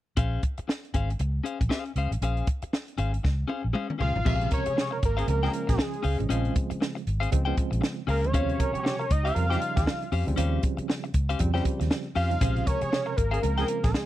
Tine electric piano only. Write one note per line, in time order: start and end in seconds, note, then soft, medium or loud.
4.25 4.97 C3 medium
4.25 4.97 F3 medium
4.25 4.97 G#3 medium
4.31 5.00 C#3 medium
5.27 5.38 C#3 medium
5.27 5.38 F3 medium
5.27 5.39 G#3 medium
5.27 5.39 C4 medium
5.42 5.95 C#3 medium
5.42 5.95 F3 medium
5.42 5.95 G#3 medium
5.42 5.48 C4 medium
5.49 5.99 C#4 medium
6.19 6.26 C#3 medium
6.19 6.27 F3 medium
6.19 6.27 G#3 medium
6.19 6.27 C#4 medium
6.29 7.01 C#3 medium
6.29 7.01 F3 medium
6.29 7.01 G#3 medium
6.29 7.01 C4 loud
7.32 7.42 C#3 loud
7.32 7.42 F3 medium
7.32 7.43 G#3 medium
7.32 7.43 C4 loud
7.47 7.99 C#3 medium
7.47 7.99 F3 medium
7.47 8.00 G#3 medium
7.47 7.52 B3 medium
7.54 8.03 C4 medium
8.24 8.31 C#3 medium
8.24 8.31 F3 medium
8.24 8.31 G#3 medium
8.24 8.31 C4 medium
8.34 9.05 C#3 medium
8.34 9.05 F3 medium
8.34 9.05 G3 medium
8.34 8.42 B3 medium
8.41 9.09 C3 medium
9.35 9.46 C#3 medium
9.35 9.46 F3 medium
9.35 9.46 G3 medium
9.35 9.46 C4 medium
9.50 10.03 C#3 medium
9.50 10.03 F3 medium
9.50 9.56 F#3 medium
9.50 10.03 D#4 medium
9.57 10.06 G3 medium
10.27 10.34 C#3 medium
10.27 10.34 F3 medium
10.27 10.34 G3 medium
10.27 10.35 C4 loud
10.37 11.09 C#3 loud
10.37 11.09 F3 medium
10.37 11.09 G3 medium
10.37 11.09 C4 medium
11.39 11.50 C#3 medium
11.39 11.50 F3 medium
11.39 11.50 G3 medium
11.39 11.50 C4 loud
11.54 12.07 C#3 medium
11.54 12.07 F3 medium
11.54 12.07 G3 medium
11.54 12.07 C4 loud
12.30 12.38 C#3 medium
12.30 12.38 F3 medium
12.30 12.38 G3 medium
12.30 12.38 D#4 medium
12.40 13.13 C3 medium
12.40 13.12 C#3 medium
12.40 13.12 F3 medium
12.40 13.12 G#3 medium
13.43 13.54 C#3 medium
13.43 13.54 F3 medium
13.43 13.54 G#3 medium
13.43 13.54 C4 medium
13.58 14.06 C#3 medium
13.58 14.06 F3 medium
13.58 14.06 G#3 medium
13.58 14.06 C4 medium